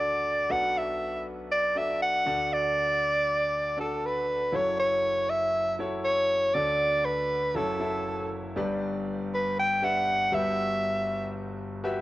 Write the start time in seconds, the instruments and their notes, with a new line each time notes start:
Already playing: grand piano D2 D3 D4 F#4 A4 D5, soprano saxophone D5
0.49 grand piano B1 B2 D4 F#4 A4 B4, soprano saxophone F#5
0.78 soprano saxophone E5
1.52 soprano saxophone D5
1.75 grand piano D4 F#4 A4 D5, soprano saxophone E5
2.02 soprano saxophone F#5
2.26 grand piano D2 D3 D4 F#4 A4 D5
2.54 soprano saxophone D5
3.77 grand piano D4 F#4 A4 D5, soprano saxophone A4
4.06 soprano saxophone B4
4.52 grand piano F#1 F#2 E4 F#4 A4 C#5, soprano saxophone C#5
4.80 soprano saxophone C#5
5.30 soprano saxophone E5
5.79 grand piano E4 F#4 A4 C#5
6.04 soprano saxophone C#5
6.54 grand piano D2 D3 D4 F#4 A4 D5, soprano saxophone D5
7.05 soprano saxophone B4
7.55 grand piano F#1 F#2 E4 F#4 A4 C#5, soprano saxophone A4
7.80 grand piano E4 F#4 A4 E5
8.56 grand piano G1 G2 D4 G4 B4 D5
9.35 soprano saxophone B4
9.60 soprano saxophone G5
9.82 grand piano D4 G4 B4 E5, soprano saxophone F#5
10.32 grand piano G1 G2 F#4 G4 B4 E5, soprano saxophone E5
11.84 grand piano F#4 G4 B4 E5